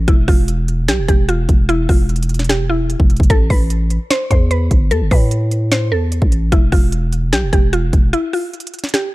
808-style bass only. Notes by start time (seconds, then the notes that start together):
0.08 E1
0.28 E1
0.88 B1
0.98 E1
1.08 E1
1.49 E1
1.89 E1
3.00 E1
3.20 E1
3.30 A1
3.50 A1
4.31 E2
4.71 G1
4.91 E2
5.01 G1
5.11 A2
5.92 E2
6.22 A1
6.52 E1
6.72 E1
7.33 B1
7.43 E1
7.53 E1
7.93 E1